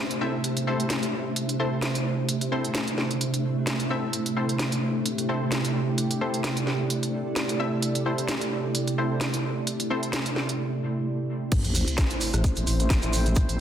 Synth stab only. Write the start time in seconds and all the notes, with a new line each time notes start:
0.21 C4 E4 A4 E5
0.67 C4 E4 A4 C5
1.59 C4 E4 A4 C5
2.52 C4 E4 A4 C5
3.90 C4 E4 A4 E5
4.36 C4 E4 A4 C5
5.29 C4 E4 A4 C5
6.21 C4 E4 A4 C5
7.60 C4 E4 A4 E5
8.06 C4 E4 A4 C5
8.98 C4 E4 A4 C5
9.90 C4 E4 A4 C5